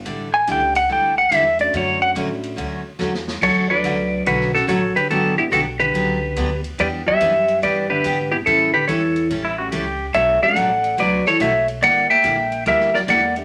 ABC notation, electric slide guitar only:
X:1
M:4/4
L:1/8
Q:"Swing" 1/4=143
K:D
V:1 name="Electric slide guitar"
z ^g =g f g f e d | c f z6 | [Ac] [Bd]3 [FB] [FA] [Ac] [GB] | [FA] [EG] [FA] [GB]4 z |
[Bd] [ce]3 [Bd] [GB]2 [EG] | [EA] [GB] [Ac]2 z4 | [ce] [df]3 [Bd] [Ac] [ce] z | [df] [eg]3 [_Be] [Bd] [df] z |]